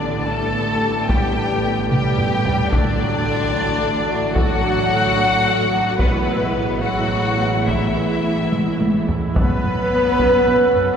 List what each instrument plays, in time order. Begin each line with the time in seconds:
Already playing: double bass section A1, cello section A2, trombone section D3, french horn section B3 G4, violin section D4 D5
0.00 viola section D3 B3
0.26 viola section G3 D4, trombone section A3, violin section A4 A5
0.54 viola section D3 B3
0.82 viola section G3 D4
1.09 viola section D3 B3, trombone section G3, violin section G4 G5, taiko
1.36 viola section G3 D4
1.64 viola section D3 B3
1.89 viola section G3 D4, trombone section G3, violin section G4 G5, taiko mid
2.17 viola section D3 B3, taiko low-mid
2.44 viola section G3 D4, taiko low
2.71 double bass section A1, cello section A2, viola section D3 A3, trombone section D3, french horn section A3 F#4, violin section D4 D5, taiko
3.00 viola section F#3 D4
3.26 viola section D3 A3
3.53 viola section F#3 D4
3.80 viola section D3 A3
4.08 viola section F#3 D4
4.34 viola section D3 A3, trombone section F#3, violin section F#4 F#5, taiko
4.63 viola section F#3 D4
4.90 viola section D3 A3
5.16 viola section F#3 D4
5.45 viola section D3 A3
5.71 viola section F#3 D4
5.98 double bass section A1, cello section A2, trombone section B2, viola section E3 B3, violin section B3 B4, french horn section B3 G#4, taiko
6.27 viola section G#3 E4
6.56 viola section E3 B3
6.83 trombone section F#3, viola section G#3 E4, violin section F#4 F#5
7.11 viola section E3 B3
7.39 viola section G#3 E4
7.67 viola section E3 B3, trombone section E3, violin section E4 E5, taiko
7.95 viola section G#3 E4
8.24 viola section E3 B3
8.52 viola section G#3 E4, taiko high
8.80 viola section E3 B3, taiko high
9.08 viola section G#3 E4, taiko low
9.35 double bass section F#1, cello section F#2, trombone section F#3 C#4, french horn section B3, viola section B3, woodwind section C#4 F#4 A4 F#5, violin section B4, trumpet section B4, taiko
9.64 double bass section F#1, cello section F#2, taiko low-mid
10.18 double bass section F#1, cello section F#2, taiko
10.46 double bass section F#1, cello section F#2, taiko low-mid
10.74 double bass section F#1, cello section F#2, taiko low-mid